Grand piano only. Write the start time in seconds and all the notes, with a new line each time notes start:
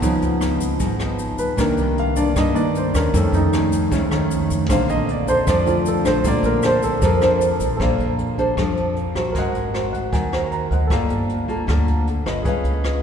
0.02 F3 B3 D#4
1.39 B4
1.57 D#3 A#3 D4 A#4
2.00 F5
2.17 D5
2.38 D#5
2.54 D#3 A#3 D4 D5
2.77 C5
2.96 A#4
3.13 D#3 A3 C#4 A4
3.35 D#4
4.11 D#3 A3 C#4
4.69 D3 C4 F5
4.90 D#5
5.11 D5
5.28 C5
5.49 D5
5.66 D3 A3 C4 F4
5.88 A4
6.06 C5
6.24 D3 C4 D5
6.45 A#4
6.66 C5
6.84 A4
7.05 A#4
7.77 A4 C5
7.81 D5 F5
9.32 A#4 C5
9.36 D#5 F#5
9.93 F#5
10.13 G#5
10.52 A#5
10.70 A#4 C5 D#5 F#5
10.87 A4 D5
10.93 F5
12.43 G#4 B4 D#5
12.49 F5